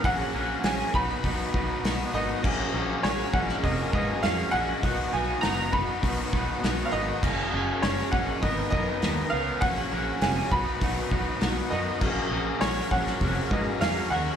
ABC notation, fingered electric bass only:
X:1
M:4/4
L:1/8
Q:1/4=100
K:F#
V:1 name="Fingered electric bass" clef=bass
A,,, A,,, A,,, B,,, B,,, B,,, B,,, G,,, | A,,, A,,, A,,, A,,, E,,, G,, E,, A,,, | B,,, B,,, F,,,2 B,,, B,,, B,,, G,,, | F,,, F,,, F,,, A,,, G,,, F,, D,, C,, |
A,,, A,,, E,,, B,,, B,,, B,,, B,,, F,, | A,,, A,,, A,,, A,,, E,,, G,, E,, D,, |]